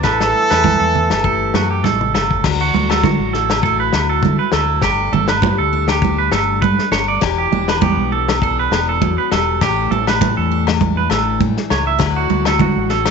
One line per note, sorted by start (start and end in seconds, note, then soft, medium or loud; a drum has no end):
0.00 0.32 A1 medium
0.00 1.23 A2 medium
0.00 0.62 E3 medium
0.00 0.66 D4 medium
0.00 0.20 B4 medium
0.00 kick medium
0.00 snare medium
0.04 1.80 E3 loud
0.04 1.80 A4 loud
0.04 muted conga soft
0.04 low agogo medium
0.20 0.49 A4 medium
0.20 snare medium
0.35 muted conga soft
0.50 0.79 E2 medium
0.50 0.79 B4 medium
0.50 snare medium
0.50 low agogo medium
0.63 3.05 E3 medium
0.63 kick medium
0.63 high conga medium
0.63 low conga medium
0.80 1.09 E2 medium
0.80 1.09 A4 medium
0.95 muted conga soft
0.95 low conga medium
1.10 1.52 G1 medium
1.10 snare medium
1.10 low agogo medium
1.24 2.41 A2 medium
1.24 2.41 G4 medium
1.24 1.53 A4 medium
1.24 kick medium
1.24 muted conga soft
1.54 1.82 F#2 medium
1.54 2.75 A3 medium
1.54 1.70 F#4 medium
1.54 snare medium
1.54 high conga medium
1.54 low agogo medium
1.71 1.84 G4 medium
1.84 2.12 A1 medium
1.84 2.15 B2 medium
1.84 2.12 A4 medium
1.84 kick medium
1.84 snare medium
1.84 high conga medium
2.01 mid tom soft
2.14 2.42 G1 medium
2.14 2.45 C#3 medium
2.14 2.43 A4 medium
2.14 snare medium
2.14 low agogo medium
2.31 kick medium
2.44 2.72 D2 loud
2.44 4.81 D3 medium
2.44 4.84 F#4 medium
2.44 kick medium
2.44 snare medium
2.44 crash medium
2.44 muted conga soft
2.44 low agogo medium
2.61 2.89 F#4 medium
2.74 3.02 D2 loud
2.74 3.65 A3 medium
2.74 high conga medium
2.90 3.03 A4 medium
2.90 snare medium
2.90 low agogo medium
3.03 3.19 D3 medium
3.03 3.93 F#3 medium
3.03 3.32 F#4 medium
3.03 kick medium
3.03 snare soft
3.03 high conga loud
3.19 3.89 A1 medium
3.33 4.53 E4 medium
3.33 3.62 A4 medium
3.33 snare soft
3.33 muted conga soft
3.50 snare medium
3.50 low agogo medium
3.63 4.24 A3 medium
3.63 3.79 A4 medium
3.63 kick medium
3.63 muted conga soft
3.80 4.08 B4 medium
3.93 4.21 D2 medium
3.93 4.80 F#3 medium
3.93 snare medium
3.93 muted conga soft
3.93 low agogo medium
4.10 4.38 A4 medium
4.23 4.38 D3 loud
4.23 5.12 A3 medium
4.23 kick medium
4.23 high conga medium
4.39 4.52 B4 medium
4.52 4.81 D2 medium
4.52 4.80 E4 medium
4.52 4.81 A4 medium
4.52 snare medium
4.52 low agogo medium
4.82 5.11 G1 loud
4.82 7.19 G2 medium
4.82 5.11 G4 medium
4.82 7.19 A4 medium
4.82 kick medium
4.82 snare medium
4.82 muted conga soft
4.82 low agogo medium
5.12 5.41 G1 loud
5.12 6.01 A3 medium
5.12 5.28 A4 medium
5.12 high conga medium
5.12 low conga medium
5.28 5.57 B4 medium
5.28 snare medium
5.28 low agogo medium
5.42 5.57 G2 medium
5.42 6.65 G3 medium
5.42 kick loud
5.42 high conga loud
5.58 6.28 D2 medium
5.58 5.87 A4 medium
5.73 6.91 D4 medium
5.73 muted conga soft
5.88 6.17 G4 medium
5.88 snare medium
5.88 low agogo medium
6.02 6.61 A3 medium
6.02 kick loud
6.02 muted conga soft
6.02 high conga medium
6.18 6.32 B4 medium
6.32 6.60 G1 loud
6.32 6.61 A4 medium
6.32 snare medium
6.32 low agogo medium
6.62 6.77 G2 loud
6.62 7.22 A3 medium
6.62 6.90 B4 loud
6.62 kick medium
6.62 high conga medium
6.79 snare soft
6.91 7.20 G1 loud
6.91 7.24 D4 medium
6.91 7.07 C#5 medium
6.91 snare medium
6.91 low agogo medium
7.08 7.21 D5 medium
7.21 7.50 E1 loud
7.21 9.02 E3 medium
7.21 9.05 G4 medium
7.21 kick medium
7.21 snare medium
7.21 muted conga soft
7.21 low agogo medium
7.38 7.67 G4 medium
7.51 7.80 E1 loud
7.51 8.43 D4 medium
7.51 high conga medium
7.68 7.81 B4 medium
7.68 snare medium
7.68 low agogo medium
7.81 7.96 E2 medium
7.81 8.71 B3 medium
7.81 8.10 G4 medium
7.81 kick medium
7.81 high conga loud
7.97 8.67 B1 medium
8.12 8.40 A4 medium
8.12 muted conga soft
8.29 snare medium
8.29 low agogo medium
8.42 9.63 D4 medium
8.42 8.58 A4 medium
8.42 kick medium
8.42 muted conga soft
8.59 8.87 B4 medium
8.71 8.99 E1 loud
8.71 9.59 B3 medium
8.71 snare medium
8.71 muted conga soft
8.71 low agogo medium
8.89 9.17 A4 medium
9.01 9.17 E2 medium
9.01 9.31 F#3 medium
9.01 kick medium
9.01 high conga medium
9.18 9.31 B4 medium
9.32 9.60 E1 loud
9.32 9.61 G3 medium
9.32 9.60 A4 medium
9.32 snare medium
9.32 low agogo medium
9.61 9.89 A1 medium
9.61 11.97 A2 medium
9.61 10.21 E3 medium
9.61 9.92 A3 medium
9.61 10.51 D4 medium
9.61 9.90 G4 medium
9.61 11.98 G4 medium
9.61 kick loud
9.61 snare medium
9.61 muted conga soft
9.61 low agogo medium
9.91 10.19 A1 loud
9.91 10.81 A3 medium
9.91 10.06 A4 medium
9.91 high conga medium
10.07 10.36 B4 medium
10.07 snare medium
10.07 low agogo medium
10.21 10.36 A2 loud
10.21 11.10 E3 medium
10.21 kick medium
10.21 snare soft
10.21 high conga loud
10.37 11.07 E2 medium
10.37 10.65 A4 medium
10.51 11.71 D4 medium
10.51 muted conga soft
10.67 snare medium
10.67 low agogo medium
10.81 11.41 A3 medium
10.81 kick loud
10.81 muted conga soft
10.81 high conga medium
10.97 11.10 B4 medium
11.10 11.39 A1 loud
11.10 11.99 E3 medium
11.10 11.39 A4 medium
11.10 snare medium
11.10 low agogo medium
11.40 11.56 A2 loud
11.40 12.00 A3 medium
11.40 kick medium
11.40 high conga medium
11.57 snare soft
11.70 11.99 C#2 loud
11.70 12.00 D4 medium
11.70 11.86 C#5 medium
11.70 snare medium
11.70 low agogo medium
11.87 12.00 E5 medium
11.99 12.28 D2 loud
11.99 13.11 D3 medium
11.99 12.58 F#3 medium
11.99 12.29 A3 medium
11.99 12.89 E4 medium
11.99 13.11 F#4 medium
11.99 kick loud
11.99 snare medium
11.99 muted conga soft
11.99 low agogo medium
12.16 12.45 F#4 medium
12.30 12.58 D2 loud
12.30 13.11 A3 medium
12.30 high conga medium
12.45 12.60 A4 medium
12.45 snare medium
12.45 low agogo medium
12.59 12.75 D3 medium
12.59 13.11 F#3 medium
12.59 12.89 F#4 medium
12.59 kick medium
12.59 high conga loud
12.77 13.11 A1 medium
12.89 13.06 C#4 medium
12.89 13.11 A4 medium
12.89 snare soft
12.89 muted conga soft
13.05 13.11 E4 soft
13.05 snare medium
13.05 low agogo medium